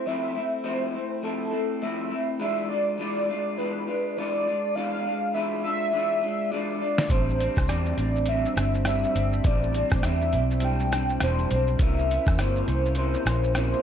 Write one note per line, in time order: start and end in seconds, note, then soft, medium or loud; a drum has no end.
0.06 0.35 F3 medium
0.06 0.35 A3 medium
0.06 0.34 C4 medium
0.06 0.33 E4 medium
0.06 0.67 E5 loud
0.34 0.63 A3 soft
0.34 0.64 C4 soft
0.34 0.64 E4 medium
0.64 0.94 F3 medium
0.64 0.94 A3 medium
0.64 0.93 C4 medium
0.64 0.92 E4 medium
0.64 1.23 C5 medium
0.93 1.22 A3 soft
0.93 1.23 C4 soft
0.93 1.23 E4 medium
1.22 1.52 F3 medium
1.22 1.52 A3 medium
1.22 1.51 C4 medium
1.22 1.50 E4 medium
1.22 1.84 A4 medium
1.51 1.81 A3 soft
1.51 1.81 C4 medium
1.51 1.81 E4 medium
1.82 2.11 F3 medium
1.82 2.11 A3 medium
1.82 2.10 C4 medium
1.82 2.09 E4 medium
1.82 2.29 E5 medium
2.10 2.39 A3 soft
2.10 2.40 C4 soft
2.10 2.40 E4 medium
2.39 2.70 E3 medium
2.39 2.70 G#3 medium
2.39 2.70 D4 medium
2.39 2.68 F4 medium
2.39 2.70 E5 loud
2.69 2.98 G#3 soft
2.69 2.98 D4 medium
2.69 2.99 F4 medium
2.69 2.99 D5 loud
2.98 3.28 E3 medium
2.98 3.29 G#3 medium
2.98 3.29 D4 medium
2.98 3.28 F4 medium
2.98 3.59 D5 medium
3.29 3.57 G#3 soft
3.29 3.58 D4 medium
3.29 3.58 F4 medium
3.58 3.87 E3 medium
3.58 3.88 G#3 medium
3.58 3.87 D4 medium
3.58 3.86 F4 medium
3.58 4.19 B4 medium
3.87 4.16 G#3 soft
3.87 4.17 D4 soft
3.87 4.17 F4 medium
4.17 4.46 E3 medium
4.17 4.47 G#3 medium
4.17 4.46 D4 medium
4.17 4.45 F4 medium
4.17 4.77 D5 loud
4.46 4.75 G#3 soft
4.46 4.75 D4 medium
4.46 4.76 F4 soft
4.75 5.05 E3 medium
4.75 5.05 G#3 medium
4.75 5.05 D4 medium
4.75 5.04 F4 medium
4.75 5.36 F5 loud
5.05 5.33 G#3 soft
5.05 5.34 D4 soft
5.05 5.34 F4 medium
5.34 5.64 E3 medium
5.34 5.64 G#3 medium
5.34 5.64 D4 medium
5.34 5.63 F4 medium
5.34 5.63 E5 medium
5.64 5.92 G#3 soft
5.64 5.93 D4 soft
5.64 5.93 F4 medium
5.64 6.52 E5 loud
5.92 6.22 E3 medium
5.92 6.22 G#3 medium
5.92 6.21 D4 medium
5.92 6.20 F4 medium
6.21 6.51 G#3 soft
6.21 6.52 D4 soft
6.21 6.51 F4 medium
6.51 6.81 E3 medium
6.51 6.81 G#3 medium
6.51 6.80 D4 medium
6.51 6.79 F4 medium
6.51 7.12 D5 loud
6.80 7.10 G#3 soft
6.80 7.09 D4 soft
6.80 7.10 F4 soft
6.98 snare medium
7.07 7.47 A1 medium
7.07 7.39 A2 medium
7.07 11.74 G3 medium
7.07 7.40 G3 medium
7.07 11.74 C4 medium
7.07 7.39 C4 medium
7.07 9.41 D4 medium
7.07 11.74 C5 medium
7.07 7.70 C5 loud
7.07 kick loud
7.07 closed hi-hat medium
7.07 shaker medium
7.11 7.37 D4 medium
7.29 shaker soft
7.38 7.67 G3 soft
7.38 7.68 C4 medium
7.38 7.68 D4 medium
7.38 closed hi-hat medium
7.38 shaker soft
7.56 7.67 C2 medium
7.56 kick medium
7.56 cross-stick medium
7.56 shaker soft
7.68 7.92 E2 medium
7.68 7.98 A2 medium
7.68 7.98 G3 medium
7.68 7.98 C4 medium
7.68 7.96 D4 medium
7.68 8.27 D5 loud
7.68 cross-stick medium
7.68 closed hi-hat medium
7.68 tambourine medium
7.68 shaker medium
7.86 shaker soft
7.97 8.45 A1 medium
7.97 8.27 G3 soft
7.97 8.28 C4 soft
7.97 8.27 D4 medium
7.97 closed hi-hat soft
7.97 shaker soft
8.16 shaker medium
8.26 8.57 A2 medium
8.26 8.56 G3 medium
8.26 8.56 C4 medium
8.26 8.54 D4 medium
8.26 8.82 E5 medium
8.26 closed hi-hat medium
8.26 shaker medium
8.45 shaker medium
8.56 9.04 G1 medium
8.56 8.84 G3 soft
8.56 8.84 C4 soft
8.56 8.85 D4 medium
8.56 cross-stick medium
8.56 closed hi-hat medium
8.56 shaker medium
8.74 shaker medium
8.84 9.14 A2 medium
8.84 9.15 G3 medium
8.84 9.14 C4 medium
8.84 9.13 D4 medium
8.84 9.48 E5 loud
8.84 cross-stick medium
8.84 closed hi-hat medium
8.84 tambourine medium
8.84 shaker medium
9.04 shaker medium
9.15 9.39 G1 medium
9.15 9.44 G3 soft
9.15 9.44 C4 soft
9.15 9.44 D4 medium
9.15 closed hi-hat medium
9.15 shaker medium
9.33 shaker medium
9.44 9.82 A1 loud
9.44 9.74 A2 medium
9.44 9.74 G3 medium
9.44 9.73 C4 medium
9.44 9.71 D4 medium
9.44 11.77 E4 medium
9.44 10.07 D5 loud
9.44 kick loud
9.44 closed hi-hat medium
9.44 shaker medium
9.63 shaker soft
9.73 10.01 G3 soft
9.73 10.02 C4 medium
9.73 10.02 D4 medium
9.73 closed hi-hat soft
9.73 shaker soft
9.89 10.01 A1 medium
9.89 kick medium
9.89 cross-stick medium
9.89 shaker soft
10.01 10.34 E2 medium
10.01 10.32 A2 medium
10.01 10.32 G3 medium
10.01 10.32 C4 medium
10.01 10.30 D4 medium
10.01 10.66 E5 loud
10.01 cross-stick medium
10.01 closed hi-hat medium
10.01 tambourine medium
10.01 shaker medium
10.21 shaker soft
10.32 11.17 B1 medium
10.32 10.61 G3 medium
10.32 10.62 C4 medium
10.32 10.61 D4 soft
10.32 closed hi-hat soft
10.32 shaker soft
10.51 shaker medium
10.60 10.91 A2 medium
10.60 10.92 G3 medium
10.60 10.92 C4 medium
10.60 10.90 D4 medium
10.60 closed hi-hat medium
10.60 shaker medium
10.64 11.22 G5 loud
10.80 shaker medium
10.91 11.21 G3 soft
10.91 11.21 C4 medium
10.91 11.21 D4 medium
10.91 cross-stick medium
10.91 closed hi-hat medium
10.91 shaker medium
11.09 shaker medium
11.20 11.44 E1 medium
11.20 11.50 A2 medium
11.20 11.51 G3 medium
11.20 11.51 C4 medium
11.20 11.50 D4 medium
11.20 11.84 C5 loud
11.20 cross-stick medium
11.20 closed hi-hat medium
11.20 tambourine medium
11.20 shaker medium
11.38 shaker medium
11.51 11.74 B1 loud
11.51 11.79 G3 soft
11.51 11.80 C4 medium
11.51 11.80 D4 medium
11.51 closed hi-hat medium
11.51 shaker medium
11.67 shaker medium
11.79 12.17 C2 loud
11.79 12.08 C3 medium
11.79 12.09 E3 medium
11.79 12.09 A#3 medium
11.79 13.82 A#3 medium
11.79 13.82 C#4 medium
11.79 12.08 C#4 medium
11.79 13.82 E4 medium
11.79 13.82 C5 medium
11.79 12.41 E5 loud
11.79 kick loud
11.79 closed hi-hat medium
11.79 shaker medium
11.99 shaker soft
12.09 12.38 E3 soft
12.09 12.38 A#3 medium
12.09 12.38 C#4 medium
12.09 closed hi-hat medium
12.09 shaker medium
12.25 12.36 E2 medium
12.25 kick medium
12.25 cross-stick medium
12.25 shaker medium
12.38 12.61 G1 medium
12.38 12.67 C3 medium
12.38 12.68 E3 medium
12.38 12.68 A#3 medium
12.38 12.66 C#4 medium
12.38 12.97 C5 loud
12.38 cross-stick medium
12.38 closed hi-hat medium
12.38 tambourine medium
12.38 shaker medium
12.56 shaker medium
12.67 13.14 C2 medium
12.67 12.96 E3 soft
12.67 12.97 A#3 medium
12.67 12.96 C#4 medium
12.67 closed hi-hat soft
12.67 shaker soft
12.85 shaker medium
12.95 13.26 C3 medium
12.95 13.26 E3 medium
12.95 13.25 A#3 medium
12.95 13.24 C#4 medium
12.95 13.52 C5 medium
12.95 closed hi-hat medium
12.95 shaker medium
13.14 shaker medium
13.25 13.72 A#1 medium
13.25 13.54 E3 soft
13.25 13.54 A#3 medium
13.25 13.55 C#4 medium
13.25 cross-stick medium
13.25 closed hi-hat medium
13.25 shaker medium
13.44 shaker medium
13.54 13.82 C3 medium
13.54 13.82 E3 medium
13.54 13.82 A#3 medium
13.54 13.82 C#4 medium
13.54 13.82 C5 loud
13.54 cross-stick medium
13.54 closed hi-hat medium
13.54 tambourine medium
13.54 shaker medium
13.73 shaker soft